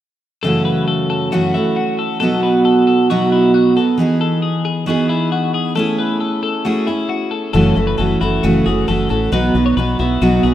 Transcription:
0.43 F#2 C#3 E3 A3 C#4 F#4 A4
0.65 B4
0.88 A4
1.10 A4
1.32 F#2 C#3 E3 A3 C#4 F#4
1.54 E3 A3 C#4 E4 F#4
1.76 F#4
1.99 A4
2.20 B2 F#3 B3 D#4 F#4 A4
2.43 B4
2.65 A4
2.87 A4
3.10 B2 F#3 B3 D#4 F#4
3.32 E4
3.54 F#4
3.76 B3 D#4 F#4 A4
3.98 E3 B3 D#4 G#4
4.21 A4
4.42 G#4
4.65 G#4
4.86 E3 B3 D#4 F#4 G#4
5.09 E4
5.32 F#4
5.54 G#4
5.75 A3 C#4 E4 G#4 A4
5.99 B4
6.20 A4
6.43 A4
6.65 A3 C#4 E4 F#4 G#4
6.87 C#4 E4 G#4
7.09 F#4
7.31 A4
7.53 F#1 F#2 C#3 E3 A3 C#4 F#4 A4
7.75 F#1 E3 A3 C#4 F#4
7.87 B4
7.97 F#1 E3 A3 C#4 F#4 A4
8.21 F#1 E3 A3 C#4 E4 F#4
8.43 F#1 F#2 C#3 E3 A3 C#4 F#4
8.65 F#1 E3 A3 C#4 F#4 G#4
8.88 F#1 E3 A3 C#4 F#4 A4
9.09 A1 E3 A3 C#4 F#4 A4
9.32 B1 B2 F#3 B3 D#4 F#4 B4
9.55 B1 B3 D#4 F#4
9.66 C#5
9.77 B1 F#3 B3 D#4 F#4 B4
9.99 B1 B3 D#4 E4 F#4
10.21 B1 B2 F#3 B3 D#4 F#4
10.43 B1 B3 D#4 F#4 G#4

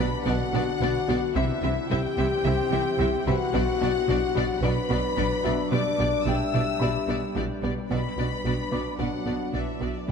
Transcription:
Already playing: D3 D4 G4 B4 F#5 A5 B5
0.00 B2 D4 F#4 B4
0.26 B1 B2 B3 D4 F#4 D5 F#5
0.53 B1 B2 B3 D4 F#4 D5
0.81 B1 B2 D4 F#4 B4 D5
1.08 B1 B2 B3 D4 F#4 D5
1.36 C2 C3 E3 C4 E4 G4 C5 E5
1.62 C2 C3 E3 C4 E4 E5
1.89 C2 C3 C4 E4 G4 E5 G5
2.17 C2 C3 C4 E4 E5
2.44 C2 C3 C4 E4 E5
2.71 C2 C3 G3 C4 E4 E5
2.98 C2 C3 C4 E4 E5
3.26 C2 C3 G3 C4 E4 F#4 B4 E5 F#5 B5
3.53 B1 B2 F#3 B3 D4 F#4 B4 D5
3.81 B1 B2 D4 F#4 D5
4.08 B1 B2 D4 F#4 D5
4.35 B1 B2 D4 F#4 B4 D5
4.62 B1 B2 B3 D4 F#4 B4 D5 B5
4.90 B1 B2 B3 D4 F#4 D5
5.16 B1 B2 D4 F#4 B4 D5
5.44 B1 B2 B3 D4 F#4 D5 E5
5.72 B1 B2 G3 D4 G4 D5 D6
5.99 B1 B2 B3 D4 G4 D5
6.25 B1 B2 D4 G4 D5 E5 G5 E6
6.53 B1 B2 D4 E4 G4 D5
6.79 B1 B2 G3 D4 G4 D5 B5
7.08 B1 B2 B3 D4 G4 D5
7.35 B1 B2 D4 E4 G4 D5
7.63 B1 B2 B3 D4 G4 D5
7.90 B1 B2 F#3 B3 D4 F#4 B4 D5 B5
8.18 B1 B2 D4 F#4 D5
8.44 B1 B2 D4 F#4 D5
8.72 B1 B2 D4 F#4 B4 D5 D6
8.99 B1 B2 B3 D4 F#4 D5 F#5
9.26 B1 B2 B3 D4 F#4 D5
9.54 B1 B2 D4 E4 F#4 B4 D5 E5
9.81 B1 B2 B3 D4 F#4 D5
9.96 D4 D5
10.08 C2 C3 E4

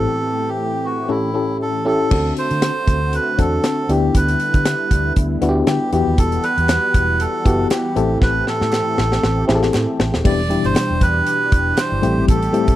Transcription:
Already playing: A2 E3 A3 C4 E4 G4 A4
0.48 G4
0.85 F#4
1.09 A2 C#4 E4 G4 A4
1.34 C#4 E4 G4 A4
1.62 A4
1.85 C#4 E4 G4 A4
2.10 D2 D3 A3 C4 D4 F#4 A4, kick, crash
2.37 C5, closed hi-hat
2.51 D3, closed hi-hat
2.62 snare, closed hi-hat
2.87 D2, kick, closed hi-hat
3.13 B4, closed hi-hat
3.38 E2 C4 D4 F#4 A4, kick, closed hi-hat
3.64 snare, closed hi-hat
3.89 D2 D3 G3 B3 D4 E4 G4, closed hi-hat
4.15 D2 B4, kick, closed hi-hat
4.28 closed hi-hat
4.40 closed hi-hat
4.54 D3, kick, closed hi-hat
4.65 snare, closed hi-hat
4.91 D2, kick, closed hi-hat
5.16 D2, kick, closed hi-hat
5.41 D2 B3 D4 E4 F#4, closed hi-hat
5.49 G4
5.67 D3 G4, snare, closed hi-hat
5.93 E2 E3 B3 E4 F#4 G4 F#5, closed hi-hat
6.07 D#2
6.18 E1 A4, kick, closed hi-hat
6.32 closed hi-hat
6.44 B4, closed hi-hat
6.58 E2, closed hi-hat
6.69 snare, clap, closed hi-hat, tambourine
6.94 E1, kick, closed hi-hat
7.20 A4, closed hi-hat
7.45 F#1 B3 E4 F#4 G4, kick, closed hi-hat
7.71 G4, snare, clap, closed hi-hat, tambourine
7.96 A1 A2 A3 C4 E4 G4 A4, closed hi-hat
8.22 A1 B4, kick, snare
8.47 A4, snare
8.61 A2, snare
8.73 snare, clap
8.98 A1, snare
9.12 snare
9.23 A1, snare
9.48 A1 C4 E4 G4 G#4, snare
9.55 A4
9.63 snare
9.74 A2, snare, clap
10.00 A1, snare
10.14 D#1, snare
10.24 E1 B2 E3 G3 B3 D4 E4 G4 D5, kick, crash
10.49 B2 G3 D4 E4 G4, closed hi-hat
10.64 G1 C5, closed hi-hat
10.76 snare, clap, closed hi-hat, tambourine
10.90 E1
11.01 E2 B4, kick, closed hi-hat
11.27 closed hi-hat
11.52 E1, kick, closed hi-hat
11.77 C5, snare, clap, closed hi-hat, tambourine
11.92 G1
12.02 A1 A2 G3 A3 C4 E4 G4, closed hi-hat
12.18 G#1
12.28 A1 A4, kick, closed hi-hat
12.43 closed hi-hat
12.52 G3 A3 C4 E4 G4, closed hi-hat
12.68 A2, kick, closed hi-hat

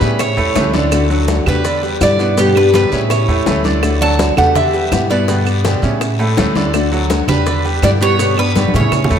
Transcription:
Already playing: D4 B4
0.01 A2 C#3 G3 B3 C#4 E4 G4, high bongo, high conga, short guiro, maracas
0.19 E4 C#5, muted nylon-string guitar stroke, high bongo, high conga, long guiro, claves, maracas
0.37 E2 A2 A3 A4, high bongo, high conga, maracas
0.55 D2 A2 E3 G3 A3 C#4 E4 A4, high bongo, low bongo, high conga, short guiro, maracas
0.73 D3 G3 C#4 D4 E4 D5, high bongo, high conga, short guiro, maracas
0.92 D3 A3 D4 F#4, high bongo, long guiro, claves, maracas
1.10 F#3 A3 D4 F#4 A4, high conga, maracas
1.28 D3 A3 D4 F#4, high bongo, high conga, short guiro, maracas
1.46 E2 G3 A3 D4 F#4 G4 B4, high conga, low conga, short guiro, claves, maracas
1.64 D3 D4 D5, muted nylon-string guitar stroke, high bongo, high conga, long guiro, maracas
1.83 G3 G4 B4, high bongo, high conga, maracas
2.01 G2 B2 D3 G3 B3 E4 G4 D5, high bongo, low bongo, high conga, short guiro, claves, maracas
2.19 B2 G3 B3 E4 B4, high bongo, short guiro, maracas
2.37 B2 D3 G3 B3 G4 B4, high bongo, high conga, long guiro, maracas
2.56 G3 B3 D4 G4 B4, high conga, claves, maracas
2.74 B2 D3 G3 B3 D4 G4 B4, high bongo, high conga, short guiro, maracas
2.92 A2 C#3 G3 B3 C#4 E4 G4, high bongo, high conga, short guiro, maracas
3.10 E4 C#5, muted nylon-string guitar stroke, high bongo, high conga, long guiro, claves, maracas
3.28 E2 A2 A3 A4, high bongo, high conga, maracas
3.46 D2 A2 E3 G3 A3 C#4 E4 A4, high bongo, low bongo, high conga, short guiro, maracas
3.64 D3 G3 C#4 D4 E4 D5, high bongo, high conga, short guiro, maracas
3.83 D3 A3 D4 F#4, high bongo, high conga, long guiro, claves, maracas
4.01 F#3 A3 D4 F#4 A4 D5 A5, high conga, maracas
4.19 D3 A3 D4 F#4, high bongo, high conga, short guiro, maracas
4.37 E2 G3 A3 D4 F#4 G4 A4 B4 F#5, high bongo, high conga, low conga, short guiro, claves, maracas
4.55 D3 D4 G4 D5 E5, muted nylon-string guitar stroke, high bongo, high conga, low conga, long guiro, maracas
4.73 G3 G4 B4, high bongo, high conga, maracas
4.92 G2 B2 D3 G3 B3 E4, high bongo, low bongo, high conga, short guiro, claves, maracas
5.10 B2 G3 B3 E4 G4 B4 D5, high bongo, high conga, short guiro, maracas
5.28 B2 D3 G3 B3 G4 B4, high bongo, high conga, long guiro, maracas
5.46 G3 B3 G4, high conga, claves, maracas
5.64 B2 D3 G3 B3 D4 G4, high bongo, high conga, short guiro, maracas
5.82 A2 C#3 G3 B3 C#4 E4 G4, high bongo, high conga, short guiro, maracas
6.01 muted nylon-string guitar stroke, high bongo, high conga, long guiro, claves, maracas
6.19 A2 A3 A4, high bongo, high conga, maracas
6.37 D2 A2 E3 G3 A3 C#4 E4 A4, high bongo, low bongo, high conga, short guiro, maracas
6.55 D3 G3 C#4 D4 E4 D5, high bongo, high conga, short guiro, maracas
6.73 D3 A3 D4 F#4, high bongo, high conga, long guiro, claves, maracas
6.92 F#3 A3 D4 F#4 A4, high conga, maracas
7.10 D3 A3 D4 F#4, high bongo, high conga, short guiro, maracas
7.28 E2 G3 A3 D4 F#4 G4 B4, high bongo, high conga, low conga, short guiro, claves, maracas
7.46 D3 D4 D5, muted nylon-string guitar stroke, high bongo, long guiro, maracas
7.65 G3 G4 B4, high bongo, high conga, maracas
7.82 G2 B2 D3 G3 B3 E4 G4 D5, high bongo, low bongo, high conga, short guiro, claves, maracas
8.01 B2 G3 B3 E4 G4 B4 C#5, high bongo, high conga, short guiro, maracas
8.19 B2 D3 G3 B3 G4 B4, high bongo, high conga, long guiro, maracas
8.37 G3 B3 D4 G4 B4, high conga, claves, maracas
8.55 B2 D3 G3 B3 D4 G4, high bongo, high conga, short guiro, maracas
8.68 high conga
8.74 A2 C#3 G3 B3 C#4 E4 G4 C#5, high bongo, short guiro, maracas
8.80 low conga
8.92 muted nylon-string guitar stroke, high bongo, low conga, long guiro, claves, maracas
9.04 low conga
9.10 E2 A2 A3 A4, high bongo, maracas

